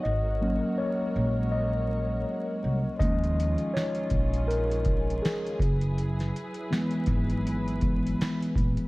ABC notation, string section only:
X:1
M:4/4
L:1/8
Q:"Swing 16ths" 1/4=81
K:Gb
V:1 name="String section"
[A,GBd]8 | [E,DFA]6- [E,DFA] [G,_Fc]- | [G,_Fc]8 |]